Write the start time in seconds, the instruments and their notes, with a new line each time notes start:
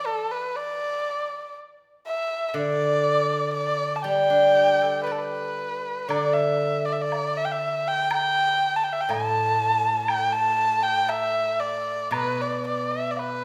Already playing: guzheng E3
0.07 erhu A4
0.31 erhu B4
0.56 erhu D5
2.07 erhu E5
2.48 erhu E5
2.54 guzheng D3, erhu D5
3.53 erhu D5
3.96 erhu A5
4.02 guzheng G3, erhu G5
4.30 guzheng D4
4.55 guzheng G4
4.82 guzheng A4
5.03 erhu B4, guzheng D5
5.12 erhu A4
5.18 erhu B4
6.08 guzheng D3, erhu D5, high woodblock
6.33 erhu E5
6.85 erhu D5
6.92 erhu E5
7.01 erhu D5
7.12 high woodblock, low woodblock
7.37 erhu E5
7.45 erhu G5
7.52 erhu E5
7.88 erhu G5
8.11 erhu G5, high woodblock
8.76 erhu A5
8.84 erhu G5
8.92 erhu E5
9.00 erhu G5
9.09 guzheng A2, erhu A5, high woodblock, low woodblock
10.08 erhu G5, high woodblock
10.32 erhu A5
10.83 erhu G5
11.09 erhu E5, high woodblock, low woodblock
11.60 erhu D5
12.11 guzheng B2, erhu B4, high woodblock
12.41 erhu D5
12.66 erhu D5
12.91 erhu E5
13.11 erhu D5
13.17 erhu B4, low woodblock